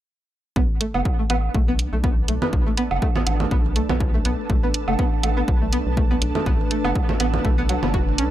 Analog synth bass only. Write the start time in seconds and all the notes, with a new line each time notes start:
0.56 B1
0.94 F#1
1.30 A1
1.54 B1
1.93 B1
2.28 B1
2.53 B1
2.91 F#1
3.27 A1
3.51 B1
3.89 B1
4.25 B1
4.50 B1
4.88 F#1
5.23 A1
5.48 B1
5.86 B1
6.22 B1
6.46 B1
6.85 F#1
7.20 A1
7.45 B1
7.83 F#1
8.18 B1